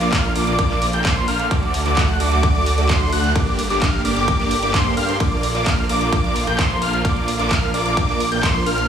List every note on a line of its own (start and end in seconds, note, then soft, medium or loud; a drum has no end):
0.00 0.10 A#1 loud
0.00 8.86 D3 medium
0.00 1.47 F3 medium
0.00 1.47 A#3 medium
0.00 0.11 A#3 medium
0.00 0.11 D4 medium
0.00 1.47 F4 medium
0.00 0.11 F4 medium
0.00 0.11 A#4 medium
0.00 0.11 D5 medium
0.00 0.11 D6 medium
0.00 clap soft
0.00 closed hi-hat medium
0.13 0.33 A#1 medium
0.13 0.32 A#3 medium
0.13 0.32 D4 medium
0.13 0.32 F4 medium
0.13 0.32 A#4 medium
0.13 0.32 F5 medium
0.13 0.32 F6 loud
0.13 kick loud
0.13 clap loud
0.13 closed hi-hat medium
0.13 ride medium
0.24 closed hi-hat soft
0.36 0.45 A#1 loud
0.36 0.46 A#3 medium
0.36 0.46 D4 medium
0.36 0.46 F4 medium
0.36 0.46 A#4 medium
0.36 0.46 D5 medium
0.36 0.46 D6 medium
0.36 open hi-hat loud
0.47 0.56 A#1 loud
0.47 0.57 A#3 medium
0.47 0.57 D4 medium
0.47 0.57 F4 medium
0.47 0.57 A#4 medium
0.47 0.57 D5 medium
0.47 0.57 D6 medium
0.47 closed hi-hat medium
0.59 0.68 A#1 loud
0.59 0.69 A#3 loud
0.59 0.69 D4 medium
0.59 0.69 F4 medium
0.59 0.69 A#4 medium
0.59 0.69 D5 loud
0.59 0.69 D6 loud
0.59 kick loud
0.59 closed hi-hat medium
0.59 ride medium
0.70 0.91 A#1 medium
0.70 0.86 A#3 medium
0.70 0.86 D4 medium
0.70 0.86 F4 medium
0.70 0.86 A#4 medium
0.70 0.86 D5 loud
0.70 0.86 D6 loud
0.70 clap soft
0.70 closed hi-hat soft
0.82 open hi-hat loud
0.93 1.03 A#1 medium
0.93 1.02 A#3 medium
0.93 1.02 D4 medium
0.93 1.02 F4 medium
0.93 1.02 A#4 medium
0.93 1.02 G5 medium
0.93 1.02 G6 medium
0.93 closed hi-hat medium
1.05 1.26 A#1 medium
1.05 1.25 A#3 medium
1.05 1.25 D4 medium
1.05 1.25 F4 medium
1.05 1.25 A#4 medium
1.05 1.25 C5 loud
1.05 1.25 C6 loud
1.05 kick loud
1.05 clap loud
1.05 closed hi-hat medium
1.05 ride medium
1.16 closed hi-hat soft
1.28 1.49 A#1 loud
1.28 1.48 A#3 medium
1.28 1.48 D4 medium
1.28 1.48 F4 medium
1.28 1.48 A#4 medium
1.28 1.48 F5 medium
1.28 1.48 F6 medium
1.28 open hi-hat loud
1.39 closed hi-hat medium
1.51 1.83 D2 loud
1.51 3.34 F#3 medium
1.51 1.76 A3 medium
1.51 3.34 A3 medium
1.51 1.76 D4 medium
1.51 1.76 F#4 medium
1.51 3.34 F#4 medium
1.51 1.76 A4 medium
1.51 1.76 D5 medium
1.51 1.76 D6 medium
1.51 kick loud
1.51 closed hi-hat medium
1.51 ride medium
1.63 closed hi-hat soft
1.74 open hi-hat loud
1.86 1.95 D2 loud
1.86 1.95 A3 medium
1.86 1.96 D4 medium
1.86 1.95 F#4 medium
1.86 1.95 A4 medium
1.86 1.96 D5 medium
1.86 1.95 D6 medium
1.86 clap soft
1.86 closed hi-hat medium
1.97 2.18 D2 loud
1.97 2.17 A3 medium
1.97 2.17 D4 medium
1.97 2.17 F#4 medium
1.97 2.17 A4 medium
1.97 2.17 F#5 medium
1.97 2.17 F#6 medium
1.97 kick loud
1.97 clap loud
1.97 closed hi-hat medium
1.97 ride medium
2.09 closed hi-hat soft
2.20 2.30 D2 loud
2.20 2.30 A3 medium
2.20 2.30 D4 medium
2.20 2.30 F#4 medium
2.20 2.30 A4 medium
2.20 2.30 D5 loud
2.20 2.30 D6 medium
2.20 open hi-hat loud
2.32 2.41 D2 loud
2.32 2.42 A3 medium
2.32 2.42 D4 medium
2.32 2.42 F#4 medium
2.32 2.42 A4 medium
2.32 2.42 D5 loud
2.32 2.42 D6 medium
2.32 closed hi-hat medium
2.43 2.53 D2 loud
2.43 2.53 A3 loud
2.43 2.53 D4 medium
2.43 2.53 F#4 medium
2.43 2.53 A4 medium
2.43 2.53 D5 loud
2.43 2.53 D6 loud
2.43 kick loud
2.43 closed hi-hat medium
2.43 ride medium
2.55 2.76 D2 medium
2.55 2.70 A3 medium
2.55 2.70 D4 medium
2.55 2.70 F#4 medium
2.55 2.70 A4 medium
2.55 2.70 D5 loud
2.55 2.70 D6 loud
2.55 closed hi-hat soft
2.66 open hi-hat loud
2.78 2.87 D2 medium
2.78 2.87 A3 medium
2.78 2.87 D4 medium
2.78 2.87 F#4 medium
2.78 2.87 A4 medium
2.78 2.87 D5 medium
2.78 2.87 D6 medium
2.78 closed hi-hat medium
2.89 3.10 D2 loud
2.89 3.10 A3 medium
2.89 3.10 D4 medium
2.89 3.10 F#4 medium
2.89 3.10 A4 medium
2.89 3.10 C5 loud
2.89 3.10 C6 loud
2.89 kick loud
2.89 clap loud
2.89 closed hi-hat medium
2.89 ride medium
3.01 closed hi-hat soft
3.13 3.33 D2 loud
3.13 3.33 A3 medium
3.13 3.33 D4 medium
3.13 3.33 F#4 medium
3.13 3.33 A4 medium
3.13 3.33 F#5 medium
3.13 3.33 F#6 medium
3.13 open hi-hat loud
3.24 closed hi-hat soft
3.36 3.68 G1 loud
3.36 5.18 G3 medium
3.36 8.85 A#3 medium
3.36 3.60 A#3 medium
3.36 3.60 D4 medium
3.36 5.18 G4 medium
3.36 3.60 G4 medium
3.36 3.60 A#4 medium
3.36 3.60 D5 medium
3.36 3.60 D6 medium
3.36 kick loud
3.36 closed hi-hat medium
3.36 ride medium
3.47 closed hi-hat soft
3.59 open hi-hat loud
3.70 3.80 G1 loud
3.70 3.80 A#3 medium
3.70 3.80 D4 medium
3.70 3.80 G4 medium
3.70 3.80 A#4 medium
3.70 3.80 D5 medium
3.70 3.80 D6 medium
3.70 clap soft
3.70 closed hi-hat medium
3.82 4.03 G1 loud
3.82 4.01 A#3 medium
3.82 4.01 D4 medium
3.82 4.01 G4 medium
3.82 4.01 A#4 medium
3.82 4.01 F5 medium
3.82 4.01 F6 medium
3.82 kick loud
3.82 clap loud
3.82 closed hi-hat soft
3.82 ride medium
3.93 closed hi-hat soft
4.05 4.14 G1 loud
4.05 4.15 A#3 medium
4.05 4.15 D4 medium
4.05 4.15 G4 medium
4.05 4.15 A#4 medium
4.05 4.15 D5 medium
4.05 4.15 D6 medium
4.05 open hi-hat loud
4.16 4.26 G1 loud
4.16 4.26 A#3 medium
4.16 4.26 D4 medium
4.16 4.26 G4 medium
4.16 4.26 A#4 medium
4.16 4.26 D5 loud
4.16 4.26 D6 loud
4.16 closed hi-hat soft
4.28 4.37 G1 loud
4.28 4.38 A#3 loud
4.28 4.38 D4 medium
4.28 4.38 G4 medium
4.28 4.38 A#4 medium
4.28 4.38 D5 loud
4.28 4.38 D6 loud
4.28 kick loud
4.28 closed hi-hat medium
4.28 ride medium
4.39 4.60 G1 medium
4.39 4.55 A#3 medium
4.39 4.55 D4 medium
4.39 4.55 G4 medium
4.39 4.55 A#4 medium
4.39 4.55 D5 medium
4.39 4.55 D6 loud
4.39 clap soft
4.39 closed hi-hat soft
4.51 open hi-hat loud
4.62 4.72 G1 loud
4.62 4.71 A#3 medium
4.62 4.71 D4 medium
4.62 4.71 G4 medium
4.62 4.71 A#4 medium
4.62 4.71 D5 loud
4.62 4.71 D6 loud
4.62 closed hi-hat medium
4.74 4.95 G2 loud
4.74 4.94 A#3 loud
4.74 4.94 D4 loud
4.74 4.94 G4 medium
4.74 4.94 A#4 medium
4.74 4.94 C5 loud
4.74 4.94 C6 loud
4.74 kick loud
4.74 clap loud
4.74 closed hi-hat soft
4.74 ride medium
4.86 closed hi-hat soft
4.97 5.07 G2 loud
4.97 5.07 A#3 medium
4.97 5.07 D4 medium
4.97 5.07 G4 medium
4.97 5.07 A#4 medium
4.97 5.07 F5 medium
4.97 5.07 F6 medium
4.97 open hi-hat loud
5.08 5.18 G2 loud
5.08 5.17 A#3 medium
5.08 5.17 D4 medium
5.08 5.17 G4 medium
5.08 5.17 A#4 medium
5.08 5.17 C5 medium
5.08 5.17 C6 medium
5.08 closed hi-hat soft
5.20 5.53 A#1 loud
5.20 8.86 F3 medium
5.20 5.45 A#3 medium
5.20 5.45 D4 medium
5.20 8.86 F4 medium
5.20 5.45 F4 medium
5.20 5.45 A#4 medium
5.20 5.45 D5 medium
5.20 5.45 D6 medium
5.20 kick loud
5.20 closed hi-hat soft
5.20 ride medium
5.32 closed hi-hat soft
5.43 open hi-hat loud
5.55 5.64 A#1 loud
5.55 5.65 A#3 medium
5.55 5.65 D4 medium
5.55 5.65 F4 medium
5.55 5.65 A#4 medium
5.55 5.65 D5 medium
5.55 5.65 D6 medium
5.55 clap soft
5.66 5.87 A#1 loud
5.66 5.86 A#3 medium
5.66 5.86 D4 medium
5.66 5.86 F4 medium
5.66 5.86 A#4 medium
5.66 5.86 F5 medium
5.66 5.86 F6 medium
5.66 kick loud
5.66 clap loud
5.66 closed hi-hat soft
5.66 ride medium
5.78 closed hi-hat soft
5.89 5.99 A#1 loud
5.89 5.99 A#3 medium
5.89 5.99 D4 medium
5.89 5.99 F4 medium
5.89 5.99 A#4 medium
5.89 5.99 D5 loud
5.89 5.99 D6 medium
5.89 open hi-hat loud
6.01 6.10 A#1 loud
6.01 6.11 A#3 medium
6.01 6.11 D4 medium
6.01 6.11 F4 medium
6.01 6.11 A#4 medium
6.01 6.11 D5 loud
6.01 6.11 D6 medium
6.01 closed hi-hat soft
6.12 6.22 A#1 loud
6.12 6.22 A#3 loud
6.12 6.22 D4 medium
6.12 6.22 F4 medium
6.12 6.22 A#4 medium
6.12 6.22 D5 loud
6.12 6.22 D6 loud
6.12 kick loud
6.12 closed hi-hat medium
6.12 ride medium
6.24 6.45 A#1 medium
6.24 6.40 A#3 medium
6.24 6.39 D4 medium
6.24 6.40 F4 medium
6.24 6.40 A#4 medium
6.24 6.40 D5 medium
6.24 6.39 D6 loud
6.24 closed hi-hat soft
6.36 open hi-hat loud
6.47 6.56 A#1 medium
6.47 6.56 A#3 medium
6.47 6.56 D4 medium
6.47 6.56 F4 medium
6.47 6.56 A#4 medium
6.47 6.56 G5 medium
6.47 6.56 G6 medium
6.47 closed hi-hat medium
6.58 6.80 A#1 medium
6.58 6.79 A#3 medium
6.58 6.79 D4 medium
6.58 6.79 F4 medium
6.58 6.79 A#4 medium
6.58 6.79 C5 loud
6.58 6.79 C6 loud
6.58 kick loud
6.58 clap loud
6.58 closed hi-hat soft
6.58 ride medium
6.70 closed hi-hat soft
6.82 7.03 A#1 loud
6.82 7.02 A#3 medium
6.82 7.02 D4 medium
6.82 7.02 F4 medium
6.82 7.02 A#4 medium
6.82 7.02 F5 medium
6.82 7.02 F6 medium
6.82 open hi-hat loud
6.93 closed hi-hat soft
7.05 7.37 A#1 loud
7.05 7.30 A#3 medium
7.05 7.30 D4 medium
7.05 7.30 F4 medium
7.05 7.30 A#4 medium
7.05 7.30 D5 medium
7.05 7.30 D6 medium
7.05 kick loud
7.05 closed hi-hat soft
7.05 ride medium
7.16 closed hi-hat soft
7.28 open hi-hat loud
7.39 7.49 A#1 loud
7.39 7.49 A#3 medium
7.39 7.49 D4 medium
7.39 7.49 F4 medium
7.39 7.49 A#4 medium
7.39 7.49 D5 medium
7.39 7.49 D6 medium
7.39 clap soft
7.39 closed hi-hat medium
7.51 7.72 A#1 loud
7.51 7.71 A#3 medium
7.51 7.71 D4 medium
7.51 7.71 F4 medium
7.51 7.71 A#4 medium
7.51 7.71 F5 medium
7.51 7.71 F6 medium
7.51 kick loud
7.51 clap loud
7.51 closed hi-hat medium
7.51 ride medium
7.63 closed hi-hat soft
7.74 7.83 A#1 loud
7.74 7.84 A#3 medium
7.74 7.84 D4 medium
7.74 7.84 F4 medium
7.74 7.84 A#4 medium
7.74 7.84 D5 loud
7.74 7.84 D6 medium
7.74 open hi-hat loud
7.85 7.95 A#1 loud
7.85 7.95 A#3 medium
7.85 7.95 D4 medium
7.85 7.95 F4 medium
7.85 7.95 A#4 medium
7.85 7.95 D5 loud
7.85 7.95 D6 medium
7.85 closed hi-hat medium
7.97 8.06 A#1 medium
7.97 8.07 A#3 loud
7.97 8.07 D4 medium
7.97 8.07 F4 medium
7.97 8.07 A#4 medium
7.97 8.07 D5 loud
7.97 8.07 D6 loud
7.97 kick loud
7.97 closed hi-hat medium
7.97 ride medium
8.09 8.29 A#1 medium
8.09 8.24 A#3 medium
8.09 8.24 D4 medium
8.09 8.24 F4 medium
8.09 8.24 A#4 medium
8.09 8.24 D5 loud
8.09 8.24 D6 loud
8.09 clap soft
8.09 closed hi-hat soft
8.20 open hi-hat loud
8.32 8.41 A#1 medium
8.32 8.41 A#3 medium
8.32 8.41 D4 medium
8.32 8.41 F4 medium
8.32 8.41 A#4 medium
8.32 8.40 G5 medium
8.32 8.40 G6 medium
8.32 closed hi-hat medium
8.43 8.64 A#1 loud
8.43 8.64 A#3 medium
8.43 8.64 D4 medium
8.43 8.64 F4 medium
8.43 8.64 A#4 medium
8.43 8.64 C5 loud
8.43 8.64 C6 loud
8.43 kick loud
8.43 clap loud
8.43 closed hi-hat medium
8.43 ride medium
8.55 closed hi-hat soft
8.66 8.87 A#1 loud
8.66 8.87 A#3 medium
8.66 8.87 D4 medium
8.66 8.87 F4 medium
8.66 8.87 A#4 medium
8.66 8.87 F5 medium
8.66 8.87 F6 medium
8.66 open hi-hat loud
8.78 closed hi-hat medium